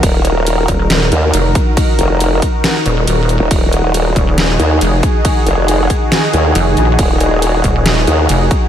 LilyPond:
<<
  \new Staff \with { instrumentName = "Analog synth pad" } { \time 4/4 \key ees \minor \tempo 4 = 138 << { bes'1~ | bes'1 | aes'1~ | aes'1~ |
aes'1 | } \\ { <ees ees' ges'>1~ | <ees ees' ges'>1~ | <ees ees' ges'>1~ | <ees ees' ges'>1~ |
<ees ees' ges'>1 | } >> }
  \new Staff \with { instrumentName = "Wobble bass" } { \clef bass \time 4/4 \key ees \minor ees,,4. r4 ees,8 r4 | r8 f,,4 r2 r16 ees,,16 | ees,,4. r4 ees,8 r4 | r8 f,,4 r4 ees,8 r4 |
ees,,4. r4 ees,8 r4 | }
  \new Staff \with { instrumentName = "Wobble bass" } { \clef bass \time 4/4 \key ees \minor r4. ees,,4 r8 f,,8 r8 | r2 r8 ees,,8 ees,,8 r8 | r4. ees,,4 r8 f,,8 r8 | r2. f,,8 bes,,8 |
r4. ees,,4 r8 f,,8 r8 | }
  \new DrumStaff \with { instrumentName = "Drums" } \drummode { \time 4/4 <cymc hh bd>8 hh8 <cymc hh>8 <hh bd>8 <cymc hh sn>8 hh8 <cymc hh>8 <hh bd>8 | <cymc hh bd>8 hh8 <cymc hh>8 <hh bd>8 <cymc hh sn>8 hh8 <cymc hh>8 hh8 | <cymc hh bd>8 hh8 <cymc hh>8 <hh bd>8 <cymc hh sn>8 hh8 <cymc hh>8 <hh bd>8 | <cymc hh bd>8 hh8 <cymc hh>8 <hh bd>8 <cymc hh sn>8 hh8 <cymc hh>8 hh8 |
<cymc hh bd>8 hh8 <cymc hh>8 <hh bd>8 <cymc hh sn>8 hh8 <cymc hh>8 <hh bd>8 | }
>>